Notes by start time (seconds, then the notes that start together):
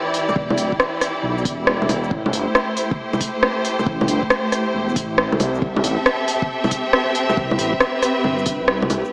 Already playing: E3 E4 G4 D5
0.14 open hi-hat, shaker
0.29 low bongo, shaker
0.36 E1, kick
0.50 low bongo
0.58 D1, open hi-hat, shaker
0.72 kick
0.80 cross-stick, shaker
1.01 cross-stick, open hi-hat, shaker
1.23 B1
1.38 shaker
1.45 E1, kick, open hi-hat, shaker
1.67 cross-stick
1.82 low bongo
1.89 E1, open hi-hat, low bongo, shaker
2.04 shaker
2.10 A1 A3 G4 C5, kick
2.26 low bongo
2.32 G1, open hi-hat, shaker
2.55 cross-stick, shaker
2.77 open hi-hat, shaker
2.91 kick
3.13 low bongo, shaker
3.21 kick, open hi-hat, shaker
3.43 cross-stick
3.65 open hi-hat, shaker
3.79 low bongo, shaker
3.86 A1, kick
4.01 low bongo
4.08 G1, open hi-hat, shaker
4.23 kick
4.30 cross-stick, shaker
4.52 cross-stick, open hi-hat, shaker
4.74 E1
4.89 shaker
4.96 A1, kick, open hi-hat, shaker
5.18 cross-stick
5.32 low bongo
5.39 C2, open hi-hat, low bongo, shaker
5.54 shaker
5.61 C2 C4 G4 A4 E5, kick
5.76 low bongo
5.83 A1, open hi-hat, shaker
6.06 cross-stick, shaker
6.28 open hi-hat, shaker
6.42 kick
6.64 low bongo, shaker
6.71 kick, open hi-hat, shaker
6.93 cross-stick
7.15 open hi-hat, shaker
7.29 low bongo, shaker
7.37 C2 B4, kick
7.51 low bongo
7.58 A1, open hi-hat, shaker
7.74 kick
7.80 cross-stick, shaker
8.03 cross-stick, open hi-hat, shaker
8.23 G1, low bongo
8.39 shaker
8.46 G1, kick, open hi-hat, shaker
8.60 C2
8.68 cross-stick
8.82 low bongo
8.90 C2, open hi-hat, low bongo, shaker
9.05 shaker